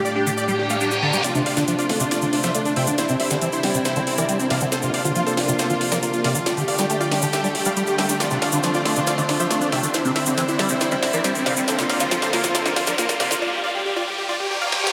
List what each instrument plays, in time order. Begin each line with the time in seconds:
Already playing: string section A2 G3 D4 G4
0.05 supersaw synth D5, cabasa
0.15 acid bass D4, supersaw synth G4
0.26 acid bass D3, supersaw synth G4, cabasa
0.37 supersaw synth D5, reverse cymbal, cabasa
0.48 acid bass G3, supersaw synth G4, cabasa
0.59 supersaw synth G4
0.70 acid bass A3, supersaw synth F5, cabasa
0.81 acid bass D4, supersaw synth G4, cabasa
0.91 supersaw synth G4, cabasa
1.02 acid bass D3, supersaw synth A5
1.13 acid bass G3, supersaw synth G4, cabasa
1.24 string section C3 A3 D4 F4, supersaw synth F4 D5, snare, closed hi-hat, cabasa
1.35 acid bass C3, supersaw synth D4, closed hi-hat, cabasa
1.46 analog synth bass D2, supersaw synth D5 F5, open hi-hat
1.57 analog synth bass A1, acid bass D3, supersaw synth D4, snare, cabasa
1.68 acid bass F3, supersaw synth D4, closed hi-hat, cabasa
1.78 supersaw synth F4 D5, closed hi-hat, cabasa
1.89 analog synth bass D2, acid bass A3, supersaw synth D4, snare, open hi-hat
2.00 analog synth bass D2, acid bass C3, supersaw synth D4, closed hi-hat, cabasa
2.11 supersaw synth F4 D5, snare, closed hi-hat, cabasa
2.22 acid bass D3, supersaw synth D4, closed hi-hat, cabasa
2.33 analog synth bass D2, supersaw synth D4, open hi-hat
2.43 analog synth bass D2, acid bass F3, supersaw synth C5 E5, snare, closed hi-hat, cabasa
2.55 acid bass A3, supersaw synth D4, closed hi-hat, cabasa
2.65 supersaw synth D4, closed hi-hat, cabasa
2.76 analog synth bass D2, acid bass C3, supersaw synth E5 G5, open hi-hat
2.87 analog synth bass D2, acid bass D3, supersaw synth D4, closed hi-hat, cabasa
2.98 string section C3 G3 E4, supersaw synth E4 C5, snare, closed hi-hat, cabasa
3.09 acid bass C3, supersaw synth C4, closed hi-hat, cabasa
3.20 analog synth bass C2, supersaw synth C5 E5, open hi-hat
3.30 analog synth bass G1, acid bass D3, supersaw synth C4, snare, cabasa
3.42 acid bass E3, supersaw synth C4, closed hi-hat, cabasa
3.52 supersaw synth E4 C5, closed hi-hat, cabasa
3.63 analog synth bass C2, acid bass G3, supersaw synth C4, snare, open hi-hat
3.74 analog synth bass C2, acid bass C3, supersaw synth C4, closed hi-hat, cabasa
3.85 supersaw synth E4 C5, snare, closed hi-hat, cabasa
3.96 acid bass D3, supersaw synth C4, closed hi-hat, cabasa
4.07 analog synth bass C2, supersaw synth C4, open hi-hat
4.18 analog synth bass C2, acid bass E3, supersaw synth A#4 D5, closed hi-hat, cabasa
4.29 acid bass G3, supersaw synth C4, closed hi-hat, cabasa
4.40 supersaw synth C4, closed hi-hat, cabasa
4.50 analog synth bass C2, acid bass C3, supersaw synth D5 F5, snare, open hi-hat
4.60 analog synth bass C2, acid bass D3, supersaw synth C4, closed hi-hat, cabasa
4.72 string section A#3 D4 F4, supersaw synth A4 C5, snare, closed hi-hat, cabasa
4.82 acid bass C3, supersaw synth F4, closed hi-hat, cabasa
4.94 analog synth bass A#1, supersaw synth D5 F5, open hi-hat
5.05 analog synth bass F2, acid bass D3, supersaw synth F4, closed hi-hat, cabasa
5.15 acid bass F3, supersaw synth F4, closed hi-hat, cabasa
5.26 supersaw synth A4 C5, closed hi-hat, cabasa
5.37 analog synth bass A#1, acid bass A#3, supersaw synth F4, snare, open hi-hat
5.48 analog synth bass A#1, acid bass C3, supersaw synth F4, closed hi-hat, cabasa
5.59 supersaw synth A4 C5, snare, closed hi-hat, cabasa
5.70 acid bass D3, supersaw synth F4, closed hi-hat, cabasa
5.81 analog synth bass A#1, supersaw synth F4, open hi-hat
5.91 analog synth bass A#1, acid bass F3, supersaw synth A#4 D5, snare, closed hi-hat, cabasa
6.03 acid bass A#3, supersaw synth F4, closed hi-hat, cabasa
6.13 supersaw synth F4, closed hi-hat, cabasa
6.24 analog synth bass A#1, acid bass C3, supersaw synth D5 F5, snare, open hi-hat
6.35 analog synth bass A#1, acid bass D3, supersaw synth F4, closed hi-hat, cabasa
6.46 string section D3 G3 A3 G4, supersaw synth F4 D5, snare, closed hi-hat, cabasa
6.57 acid bass D3, supersaw synth G4, closed hi-hat, cabasa
6.68 analog synth bass G1, supersaw synth D5 F5, open hi-hat
6.78 analog synth bass D2, acid bass G3, supersaw synth G4, snare, closed hi-hat, cabasa
6.90 acid bass A3, supersaw synth G4, closed hi-hat, cabasa
7.00 supersaw synth F4 D5, closed hi-hat, cabasa
7.11 analog synth bass G1, acid bass D4, supersaw synth G4, snare, open hi-hat
7.22 analog synth bass G1, acid bass D3, supersaw synth G4, open hi-hat, cabasa
7.33 supersaw synth G4 E5, snare, closed hi-hat, cabasa
7.44 acid bass G3, supersaw synth G4, closed hi-hat, cabasa
7.55 analog synth bass G1, supersaw synth G4, open hi-hat
7.65 analog synth bass G2, acid bass G3, supersaw synth D5 F5, closed hi-hat, cabasa
7.76 acid bass G3, supersaw synth G4, closed hi-hat, cabasa
7.87 supersaw synth G4, closed hi-hat, cabasa
7.98 analog synth bass G1, acid bass G3, supersaw synth E5 G5, snare, open hi-hat
8.09 analog synth bass G1, acid bass D4, supersaw synth G4, cabasa
8.20 string section C4 F4, supersaw synth F4 D5, snare, closed hi-hat, riser, cabasa
8.30 acid bass C3, supersaw synth D4, closed hi-hat, cabasa
8.42 analog synth bass D2, supersaw synth D5 F5, snare, open hi-hat
8.52 analog synth bass A1, acid bass D3, supersaw synth D4, closed hi-hat, cabasa
8.63 acid bass F3, supersaw synth D4, snare, closed hi-hat, cabasa
8.74 supersaw synth F4 D5, closed hi-hat, cabasa
8.85 analog synth bass D2, acid bass A3, supersaw synth D4, snare, open hi-hat
8.96 analog synth bass D2, acid bass C3, supersaw synth D4, closed hi-hat, cabasa
9.07 supersaw synth F4 D5, snare, closed hi-hat, cabasa
9.18 acid bass D3, supersaw synth D4, closed hi-hat, percussion blips, cabasa
9.29 analog synth bass D2, supersaw synth D4, snare, open hi-hat
9.40 analog synth bass D2, acid bass F3, supersaw synth C5 E5, closed hi-hat, cabasa
9.50 acid bass A3, supersaw synth D4, snare, closed hi-hat, cabasa
9.61 supersaw synth D4, closed hi-hat, cabasa
9.72 analog synth bass D2, acid bass C3, supersaw synth E5 G5, snare, open hi-hat
9.83 analog synth bass D2, acid bass D3, supersaw synth D4, closed hi-hat, cabasa
9.94 string section G3 C4 E4, supersaw synth E4 C5, snare, closed hi-hat, cabasa
10.05 acid bass C3, supersaw synth C4, closed hi-hat, cabasa
10.16 analog synth bass C2, supersaw synth C5 E5, snare, open hi-hat
10.26 analog synth bass G1, acid bass D3, supersaw synth C4, closed hi-hat, cabasa
10.37 acid bass E3, supersaw synth C4, snare, closed hi-hat, cabasa
10.48 supersaw synth E4 C5, closed hi-hat, cabasa
10.59 analog synth bass C2, acid bass G3, supersaw synth C4, snare, open hi-hat
10.69 analog synth bass C2, acid bass C3, supersaw synth C4, closed hi-hat, cabasa
10.81 supersaw synth E4 C5, snare, closed hi-hat, cabasa
10.91 acid bass D3, supersaw synth C4, closed hi-hat, percussion blips, cabasa
11.03 analog synth bass C2, supersaw synth C4, snare, open hi-hat
11.13 analog synth bass C2, acid bass E3, supersaw synth A#4 D5, closed hi-hat, cabasa
11.24 acid bass G3, supersaw synth C4, snare, closed hi-hat, cabasa
11.35 supersaw synth C4, closed hi-hat, cabasa
11.46 analog synth bass C2, acid bass C3, supersaw synth D5 F5, snare, open hi-hat, percussion blips
11.57 analog synth bass C2, acid bass D3, supersaw synth C4, closed hi-hat, cabasa
11.68 string section D3 A#3 F4, supersaw synth A4 C5, snare, closed hi-hat, cabasa
11.79 acid bass C3, supersaw synth F4, snare, closed hi-hat, cabasa
11.89 analog synth bass A#1, supersaw synth D5 F5, snare, open hi-hat
12.00 analog synth bass F2, acid bass D3, supersaw synth F4, snare, closed hi-hat, cabasa
12.11 acid bass F3, supersaw synth F4, snare, closed hi-hat, cabasa
12.22 supersaw synth A4 C5, snare, closed hi-hat, cabasa
12.33 analog synth bass A#1, acid bass A#3, supersaw synth F4, snare, open hi-hat
12.44 analog synth bass A#1, acid bass C3, supersaw synth F4, snare, closed hi-hat, cabasa
12.55 supersaw synth A4 C5, snare, closed hi-hat, cabasa
12.66 acid bass D3, supersaw synth F4, snare, closed hi-hat, percussion blips, cabasa
12.76 analog synth bass A#1, supersaw synth F4, snare, open hi-hat
12.87 analog synth bass A#1, acid bass F3, supersaw synth A#4 D5, snare, cabasa
12.98 acid bass A#3, supersaw synth F4, snare, closed hi-hat, cabasa
13.09 supersaw synth F4, snare, closed hi-hat, cabasa
13.20 analog synth bass A#1, acid bass C3, supersaw synth D5 F5, snare, open hi-hat
13.31 analog synth bass A#1, acid bass D3, supersaw synth F4, snare, cabasa
13.42 supersaw synth F4 D5
13.53 supersaw synth G4
13.64 supersaw synth D5 F5
13.75 supersaw synth G4
13.85 supersaw synth G4
13.96 supersaw synth F4 D5
14.07 supersaw synth G4
14.18 supersaw synth G4
14.29 supersaw synth F4 D5, reverse cymbal
14.40 supersaw synth G4
14.51 supersaw synth G4
14.61 supersaw synth D5 F5
14.72 supersaw synth G4, snare
14.83 supersaw synth G4, snare